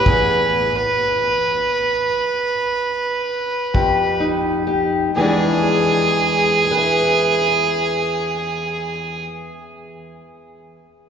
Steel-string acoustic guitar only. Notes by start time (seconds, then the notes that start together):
Already playing: E3
0.07 E2 G#4
3.74 F2 G4
4.20 D#4
4.67 G4
5.16 E2 E3 G#3
5.21 D4 G#4
6.65 G#4
6.71 B4
6.77 E5